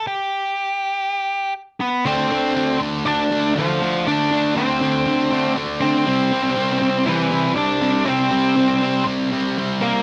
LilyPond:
<<
  \new Staff \with { instrumentName = "Lead electric guitar" } { \time 4/4 \key g \mixolydian \tempo 4 = 120 g'2. r8 <b b'>8 | \key d \minor <c' c''>4. r8 <d' d''>4 <f f'>4 | <d' d''>4 <c' c''>2 r8 <c' c''>8~ | <c' c''>2 <e e'>4 <d' d''>4 |
<c' c''>2 r4. <bes bes'>8 | }
  \new Staff \with { instrumentName = "Distorted electric guitar" } { \clef bass \time 4/4 \key g \mixolydian r1 | \key d \minor <d a d'>8 <d a d'>8 <d a d'>8 <d a d'>8 <d a d'>8 <d a d'>8 <d a d'>8 <d a d'>8 | <d a d'>8 <d a d'>8 <d a d'>8 <d a d'>8 <d a d'>8 <d a d'>8 <d a d'>8 <d a d'>8 | <c g c'>8 <c g c'>8 <c g c'>8 <c g c'>8 <c g c'>8 <c g c'>8 <c g c'>8 <c g c'>8 |
<c g c'>8 <c g c'>8 <c g c'>8 <c g c'>8 <c g c'>8 <c g c'>8 <c g c'>8 <c g c'>8 | }
>>